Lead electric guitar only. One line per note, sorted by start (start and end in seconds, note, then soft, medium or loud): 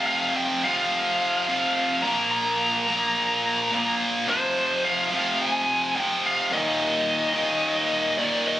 0.07 0.34 F5 medium
0.36 0.66 G5 loud
0.64 2.08 F5 loud
2.03 2.30 A#5 loud
2.31 3.95 A#5 loud
4.29 4.86 C5 medium
4.85 5.42 F5 loud
5.42 5.96 G#5 loud
5.96 6.25 G5 loud
6.26 6.53 F5 loud
6.53 8.25 D#5 loud
8.18 8.47 D5 loud
8.48 8.60 D#5 loud